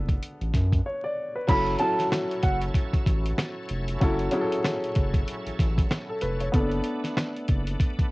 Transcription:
Already playing: sub bass F#1, grand piano B3 D4 A4
0.09 kick, closed hi-hat
0.23 closed hi-hat
0.41 sub bass A1, closed hi-hat
0.54 sub bass F#2, kick, snare, closed hi-hat
0.72 kick, closed hi-hat
0.86 grand piano C#5
1.04 grand piano D5
1.36 grand piano B4
1.47 sub bass F#1, tonewheel organ F#3 C#4 E4 A4, grand piano F#3 C#4 E4 A4, clean electric guitar B5, kick, closed hi-hat, crash
1.66 closed hi-hat
1.79 grand piano F#3 C#4 E4 A4, clean electric guitar A5, closed hi-hat
1.99 snare, closed hi-hat
2.12 snare, closed hi-hat
2.31 closed hi-hat
2.43 sub bass F#1, clean electric guitar F#5, kick, closed hi-hat
2.62 closed hi-hat
2.74 kick, closed hi-hat
2.93 sub bass A1, kick, closed hi-hat
3.06 sub bass A1, kick, closed hi-hat
3.26 closed hi-hat
3.38 snare, closed hi-hat
3.69 sub bass F1, closed hi-hat
3.88 closed hi-hat
4.00 sub bass F#1, grand piano F#3 C#4 E4 A4, kick, closed hi-hat
4.19 closed hi-hat
4.31 grand piano F#3 C#4 E4 G#4, closed hi-hat
4.41 grand piano A4
4.52 closed hi-hat
4.64 snare, closed hi-hat
4.84 closed hi-hat
4.95 sub bass F#1, kick, closed hi-hat
5.14 kick, closed hi-hat
5.28 closed hi-hat
5.46 sub bass A1, closed hi-hat
5.59 sub bass A1, kick, snare, closed hi-hat
5.78 kick, closed hi-hat
5.91 snare, closed hi-hat
6.09 grand piano A4
6.21 sub bass F1, grand piano B4, closed hi-hat
6.41 grand piano C#5, closed hi-hat
6.52 sub bass F#1, tonewheel organ A3 B3 D4, grand piano B3 C#4 A4, kick, closed hi-hat
6.60 grand piano D4
6.72 closed hi-hat
6.84 closed hi-hat
7.04 snare, closed hi-hat
7.17 snare, closed hi-hat
7.36 closed hi-hat
7.48 sub bass F#1, kick, closed hi-hat
7.67 closed hi-hat
7.80 kick, closed hi-hat
7.99 sub bass A1, kick, closed hi-hat

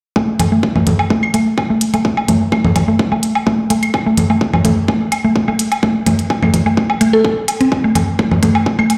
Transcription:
0.16 synth arpeggio sound A3, kick, low woodblock
0.40 closed hi-hat, low conga, low woodblock
0.52 synth arpeggio sound A3
0.63 kick
0.76 synth arpeggio sound A3, low conga, low woodblock
0.87 closed hi-hat, low conga
0.99 low woodblock
1.10 synth arpeggio sound A3, kick
1.23 claves
1.34 synth arpeggio sound A3, closed hi-hat, low woodblock
1.58 kick, low woodblock
1.70 synth arpeggio sound A3
1.81 closed hi-hat
1.94 synth arpeggio sound A3, closed hi-hat, low woodblock
2.05 kick
2.17 low woodblock
2.28 synth arpeggio sound A3, closed hi-hat, low conga
2.52 synth arpeggio sound A3, kick, claves, low woodblock
2.65 low conga
2.76 kick, closed hi-hat, low conga, low woodblock
2.88 synth arpeggio sound A3
2.99 kick
3.12 synth arpeggio sound A3, low woodblock
3.23 closed hi-hat
3.35 low woodblock
3.47 synth arpeggio sound A3, kick
3.70 synth arpeggio sound A3, closed hi-hat, low woodblock
3.83 closed hi-hat, claves
3.94 kick, low woodblock
4.06 synth arpeggio sound A3
4.17 closed hi-hat, low conga
4.30 synth arpeggio sound A3, low woodblock
4.41 kick
4.54 low conga, low woodblock
4.65 synth arpeggio sound A3, closed hi-hat, low conga
4.88 synth arpeggio sound A3, kick, low woodblock
5.12 closed hi-hat, claves, low woodblock
5.25 synth arpeggio sound A3
5.36 kick
5.48 synth arpeggio sound A3, low woodblock
5.59 closed hi-hat
5.72 closed hi-hat, low woodblock
5.83 synth arpeggio sound A3, kick
6.06 synth arpeggio sound A3, closed hi-hat, low conga, low woodblock
6.19 closed hi-hat
6.30 kick, low woodblock
6.43 synth arpeggio sound A3, low conga, claves
6.54 kick, closed hi-hat, low conga
6.66 synth arpeggio sound A3, low woodblock
6.77 kick
6.90 low woodblock
7.01 synth arpeggio sound A3, closed hi-hat
7.13 synth arpeggio sound A4
7.24 synth arpeggio sound A4, kick, low woodblock
7.48 closed hi-hat, low woodblock
7.61 synth arpeggio sound C4, closed hi-hat
7.72 kick, low woodblock
7.84 synth arpeggio sound A3
7.95 closed hi-hat, low conga, low woodblock
8.19 synth arpeggio sound A3, kick
8.31 low conga, low woodblock
8.43 synth arpeggio sound A3, closed hi-hat, low conga
8.55 low woodblock
8.66 kick
8.79 synth arpeggio sound A3, claves
8.90 closed hi-hat, low woodblock

